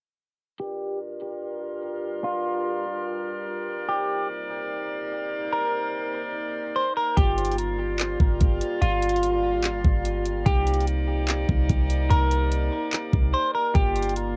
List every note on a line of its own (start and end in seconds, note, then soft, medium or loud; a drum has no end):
0.60 3.85 G2 medium
0.60 3.85 G3 medium
0.60 7.00 G3 medium
0.60 3.85 F4 medium
0.60 0.98 G4 loud
0.60 3.85 A#4 medium
0.60 7.00 A#4 medium
0.60 7.00 D5 medium
2.24 3.85 F4 loud
3.89 7.00 C3 medium
3.89 7.14 A#3 medium
3.89 7.00 D#4 medium
3.89 7.14 D#4 medium
3.89 4.27 G4 loud
3.89 7.14 C5 medium
3.89 7.14 D5 medium
5.53 6.72 A#4 loud
6.76 6.96 C5 medium
6.97 7.16 A#4 medium
7.17 8.16 G1 loud
7.17 10.43 G3 medium
7.17 13.58 A#3 medium
7.17 10.43 F4 medium
7.17 7.56 G4 loud
7.17 10.43 A#4 medium
7.17 kick loud
7.17 closed hi-hat medium
7.38 closed hi-hat medium
7.45 closed hi-hat medium
7.51 closed hi-hat soft
7.58 closed hi-hat medium
7.99 clap loud
7.99 closed hi-hat medium
8.20 8.40 G1 loud
8.20 kick medium
8.41 8.61 G1 loud
8.41 kick loud
8.41 closed hi-hat medium
8.61 closed hi-hat medium
8.82 9.55 G1 loud
8.82 10.42 F4 loud
8.82 closed hi-hat medium
9.02 closed hi-hat medium
9.09 closed hi-hat medium
9.16 closed hi-hat soft
9.23 closed hi-hat medium
9.54 9.71 G#1 loud
9.64 clap loud
9.64 closed hi-hat medium
9.69 9.84 G1 loud
9.84 10.44 G1 loud
9.84 kick medium
10.05 closed hi-hat medium
10.25 closed hi-hat medium
10.46 11.45 C2 loud
10.46 13.58 C3 medium
10.46 14.36 G3 medium
10.46 14.36 A#3 medium
10.46 13.58 D#4 medium
10.46 13.72 D#4 medium
10.46 10.85 G4 loud
10.46 13.58 D5 medium
10.46 13.72 D5 medium
10.46 kick loud
10.46 closed hi-hat medium
10.67 closed hi-hat medium
10.74 closed hi-hat medium
10.80 closed hi-hat soft
10.87 closed hi-hat medium
11.28 clap loud
11.28 closed hi-hat medium
11.49 11.69 C2 loud
11.49 kick medium
11.69 12.09 C2 loud
11.69 kick loud
11.69 closed hi-hat medium
11.90 closed hi-hat medium
12.10 12.70 C2 loud
12.10 13.30 A#4 loud
12.10 closed hi-hat medium
12.31 closed hi-hat medium
12.52 closed hi-hat medium
12.93 clap loud
12.93 closed hi-hat medium
13.13 13.33 C2 loud
13.13 kick medium
13.34 13.53 C5 medium
13.55 13.74 A#4 medium
13.75 14.36 G1 loud
13.75 14.36 A#3 medium
13.75 14.36 F4 medium
13.75 14.14 G4 loud
13.75 14.36 G4 medium
13.75 14.36 F5 medium
13.75 kick loud
13.75 closed hi-hat medium
13.96 closed hi-hat medium
14.03 closed hi-hat medium
14.09 closed hi-hat soft
14.16 closed hi-hat medium